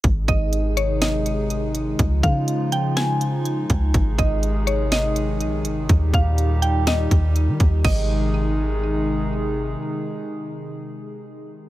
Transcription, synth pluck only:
\new Staff \with { instrumentName = "Synth pluck" } { \time 4/4 \key aes \major \tempo 4 = 123 r8 ees''4 des''8 ees''2 | r8 f''4 g''8 aes''2 | r8 ees''4 des''8 ees''2 | r8 f''4 g''8 ees''4 r4 |
ees''2. r4 | r1 | }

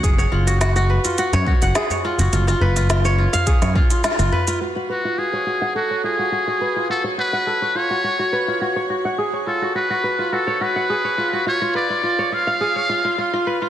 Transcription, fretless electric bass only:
\new Staff \with { instrumentName = "Fretless electric bass" } { \clef bass \time 4/4 \key fis \minor \tempo 4 = 105 fis,,16 r16 fis,,4 r8. fis,16 r16 fis,,16 r8. fis,,16 | fis,,16 r16 fis,,4 r8. fis,16 r8. fis,,16 r8 | r1 | r1 |
r1 | r1 | }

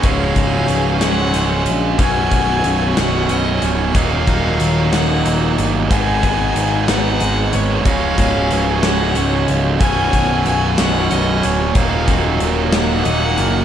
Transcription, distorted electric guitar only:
\new Staff \with { instrumentName = "Distorted electric guitar" } { \clef bass \time 6/8 \key cis \mixolydian \tempo 4. = 61 <cis, gis, cis fis gis cis'>2. | <b,, fis, b, fis cis'>2. | <dis, ais, dis fis ais dis'>2. | <gis, dis gis b dis' gis'>2. |
<cis, gis, cis fis gis cis'>2. | <b,, fis, b, fis cis'>2. | <dis, ais, dis fis ais dis'>2. | }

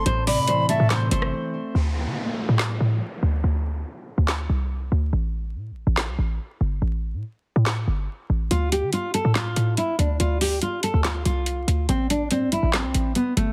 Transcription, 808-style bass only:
\new Staff \with { instrumentName = "808-style bass" } { \clef bass \time 4/4 \key d \dorian \tempo 4 = 142 a,,8. a,16 r8. a,8. g,,8 r4 | d,8. d16 r8. a,8. a,8 r8 d,8 | d,4 r8. d,8. c,4 d,8 | a,,4 a,16. a,,16. a,,8 c,16 a,,8 r8 g,,8 |
a,,8. a,16 r8. a,8. g,,8 r8 a,,8 | d,8. d16 r8. a,8. a,8 r8 d,8 | d,4 r8. d,8. c,4 d,8 | a,,4 a,16. a,,16. a,,8 c,16 a,,8 r8 g,,8 | }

